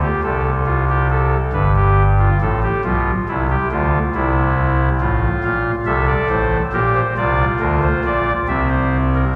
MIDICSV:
0, 0, Header, 1, 2, 480
1, 0, Start_track
1, 0, Tempo, 869565
1, 846, Time_signature, 4, 2, 24, 8
1, 5165, End_track
2, 0, Start_track
2, 0, Title_t, "Pipe organ"
2, 0, Program_c, 0, 19
2, 12, Note_on_c, 0, 67, 69
2, 113, Note_off_c, 0, 67, 0
2, 126, Note_on_c, 0, 36, 63
2, 126, Note_on_c, 0, 48, 63
2, 126, Note_on_c, 0, 69, 73
2, 274, Note_off_c, 0, 69, 0
2, 365, Note_on_c, 0, 65, 79
2, 468, Note_off_c, 0, 65, 0
2, 493, Note_on_c, 0, 67, 73
2, 593, Note_off_c, 0, 67, 0
2, 606, Note_on_c, 0, 69, 78
2, 744, Note_off_c, 0, 48, 0
2, 745, Note_off_c, 0, 36, 0
2, 755, Note_off_c, 0, 69, 0
2, 842, Note_on_c, 0, 31, 62
2, 843, Note_on_c, 0, 71, 85
2, 846, Note_on_c, 0, 43, 62
2, 949, Note_off_c, 0, 71, 0
2, 972, Note_on_c, 0, 67, 72
2, 1121, Note_off_c, 0, 67, 0
2, 1209, Note_on_c, 0, 65, 76
2, 1259, Note_off_c, 0, 31, 0
2, 1261, Note_off_c, 0, 43, 0
2, 1312, Note_off_c, 0, 65, 0
2, 1330, Note_on_c, 0, 45, 72
2, 1331, Note_on_c, 0, 33, 69
2, 1331, Note_on_c, 0, 69, 82
2, 1433, Note_off_c, 0, 69, 0
2, 1451, Note_on_c, 0, 67, 78
2, 1478, Note_off_c, 0, 45, 0
2, 1479, Note_off_c, 0, 33, 0
2, 1553, Note_off_c, 0, 67, 0
2, 1569, Note_on_c, 0, 65, 81
2, 1570, Note_on_c, 0, 47, 66
2, 1571, Note_on_c, 0, 35, 71
2, 1718, Note_off_c, 0, 47, 0
2, 1718, Note_off_c, 0, 65, 0
2, 1719, Note_off_c, 0, 35, 0
2, 1812, Note_on_c, 0, 48, 72
2, 1812, Note_on_c, 0, 64, 81
2, 1816, Note_on_c, 0, 36, 69
2, 1914, Note_off_c, 0, 64, 0
2, 1931, Note_on_c, 0, 67, 79
2, 1960, Note_off_c, 0, 48, 0
2, 1962, Note_off_c, 0, 36, 0
2, 2033, Note_off_c, 0, 67, 0
2, 2051, Note_on_c, 0, 50, 67
2, 2052, Note_on_c, 0, 65, 83
2, 2053, Note_on_c, 0, 38, 68
2, 2198, Note_off_c, 0, 50, 0
2, 2199, Note_off_c, 0, 65, 0
2, 2200, Note_off_c, 0, 38, 0
2, 2288, Note_on_c, 0, 64, 92
2, 2290, Note_on_c, 0, 36, 75
2, 2291, Note_on_c, 0, 48, 71
2, 2699, Note_off_c, 0, 64, 0
2, 2701, Note_off_c, 0, 36, 0
2, 2701, Note_off_c, 0, 48, 0
2, 2763, Note_on_c, 0, 65, 71
2, 2764, Note_on_c, 0, 45, 73
2, 2765, Note_on_c, 0, 33, 68
2, 2913, Note_off_c, 0, 45, 0
2, 2914, Note_off_c, 0, 33, 0
2, 3002, Note_on_c, 0, 46, 68
2, 3002, Note_on_c, 0, 77, 78
2, 3004, Note_on_c, 0, 34, 65
2, 3151, Note_off_c, 0, 46, 0
2, 3152, Note_off_c, 0, 77, 0
2, 3153, Note_off_c, 0, 34, 0
2, 3176, Note_off_c, 0, 65, 0
2, 3232, Note_on_c, 0, 36, 77
2, 3233, Note_on_c, 0, 69, 72
2, 3234, Note_on_c, 0, 48, 69
2, 3234, Note_on_c, 0, 76, 85
2, 3342, Note_off_c, 0, 76, 0
2, 3351, Note_on_c, 0, 74, 82
2, 3386, Note_off_c, 0, 36, 0
2, 3387, Note_off_c, 0, 48, 0
2, 3461, Note_off_c, 0, 74, 0
2, 3475, Note_on_c, 0, 45, 74
2, 3476, Note_on_c, 0, 72, 85
2, 3477, Note_on_c, 0, 33, 73
2, 3629, Note_off_c, 0, 45, 0
2, 3629, Note_off_c, 0, 72, 0
2, 3630, Note_off_c, 0, 33, 0
2, 3653, Note_off_c, 0, 69, 0
2, 3715, Note_on_c, 0, 34, 77
2, 3715, Note_on_c, 0, 67, 82
2, 3715, Note_on_c, 0, 70, 95
2, 3716, Note_on_c, 0, 46, 79
2, 3824, Note_off_c, 0, 70, 0
2, 3832, Note_on_c, 0, 72, 79
2, 3868, Note_off_c, 0, 34, 0
2, 3868, Note_off_c, 0, 46, 0
2, 3868, Note_off_c, 0, 67, 0
2, 3942, Note_off_c, 0, 72, 0
2, 3958, Note_on_c, 0, 65, 70
2, 3959, Note_on_c, 0, 36, 69
2, 3959, Note_on_c, 0, 48, 71
2, 3959, Note_on_c, 0, 74, 83
2, 4110, Note_off_c, 0, 36, 0
2, 4110, Note_off_c, 0, 48, 0
2, 4110, Note_off_c, 0, 74, 0
2, 4193, Note_on_c, 0, 70, 84
2, 4194, Note_on_c, 0, 38, 74
2, 4194, Note_on_c, 0, 50, 76
2, 4302, Note_off_c, 0, 70, 0
2, 4320, Note_on_c, 0, 72, 81
2, 4347, Note_off_c, 0, 38, 0
2, 4347, Note_off_c, 0, 50, 0
2, 4426, Note_off_c, 0, 72, 0
2, 4442, Note_on_c, 0, 34, 72
2, 4443, Note_on_c, 0, 46, 72
2, 4446, Note_on_c, 0, 74, 83
2, 4582, Note_off_c, 0, 65, 0
2, 4593, Note_off_c, 0, 34, 0
2, 4594, Note_off_c, 0, 46, 0
2, 4596, Note_off_c, 0, 74, 0
2, 4679, Note_on_c, 0, 60, 68
2, 4679, Note_on_c, 0, 76, 83
2, 4681, Note_on_c, 0, 36, 74
2, 4682, Note_on_c, 0, 48, 70
2, 4787, Note_off_c, 0, 76, 0
2, 4801, Note_on_c, 0, 72, 78
2, 4954, Note_off_c, 0, 72, 0
2, 5049, Note_on_c, 0, 70, 79
2, 5100, Note_off_c, 0, 60, 0
2, 5101, Note_off_c, 0, 36, 0
2, 5101, Note_off_c, 0, 48, 0
2, 5154, Note_off_c, 0, 70, 0
2, 5165, End_track
0, 0, End_of_file